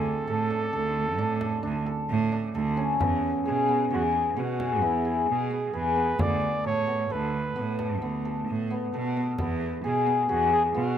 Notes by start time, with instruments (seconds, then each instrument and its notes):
Already playing: cello D2, hammered dulcimer C4 D4 G#4, flugelhorn A4
0.06 frame drum
0.27 cello A2, hammered dulcimer A4, frame drum
0.50 hammered dulcimer D4, frame drum
0.73 cello D2, hammered dulcimer A4
1.18 cello A2, hammered dulcimer D4
1.41 hammered dulcimer A4, frame drum
1.63 cello D2, hammered dulcimer D4, frame drum
1.86 hammered dulcimer A4
2.09 cello A2, frame drum
2.32 hammered dulcimer D4
2.55 cello D2, hammered dulcimer A4, frame drum
2.77 hammered dulcimer C#4, frame drum
3.00 cello E2, hammered dulcimer B3, frame drum
3.23 frame drum
3.45 cello B2, flugelhorn G#4, hammered dulcimer G#4
3.68 hammered dulcimer B3, frame drum
3.90 cello E2, flugelhorn F#4, hammered dulcimer G#4, frame drum
4.15 flugelhorn G#4
4.37 cello B2, hammered dulcimer B3, flugelhorn F#4
4.60 hammered dulcimer G#4, frame drum
4.82 cello E2, hammered dulcimer B3, flugelhorn E4
5.05 hammered dulcimer G#4
5.28 cello B2, flugelhorn G#4
5.50 hammered dulcimer B3
5.73 cello E2, hammered dulcimer G#4, flugelhorn B4
5.96 hammered dulcimer B3
6.18 cello D2, hammered dulcimer B3, flugelhorn D5, frame drum
6.42 frame drum
6.64 cello A2, hammered dulcimer A4, flugelhorn C#5
6.87 hammered dulcimer B3, frame drum
7.10 cello D2, hammered dulcimer A4, flugelhorn B4, frame drum
7.56 cello A2, hammered dulcimer B3
7.79 hammered dulcimer A4, frame drum
8.01 cello D2, hammered dulcimer B3
8.25 hammered dulcimer A4
8.47 cello A2
8.70 hammered dulcimer B3
8.93 cello B2, hammered dulcimer A4
9.17 hammered dulcimer B3
9.38 cello E2, hammered dulcimer B3, frame drum
9.61 frame drum
9.84 cello B2, hammered dulcimer G#4, flugelhorn G#4
10.06 hammered dulcimer B3, frame drum
10.29 cello E2, flugelhorn F#4, hammered dulcimer G#4, frame drum
10.53 flugelhorn G#4
10.74 cello B2, hammered dulcimer B3, flugelhorn F#4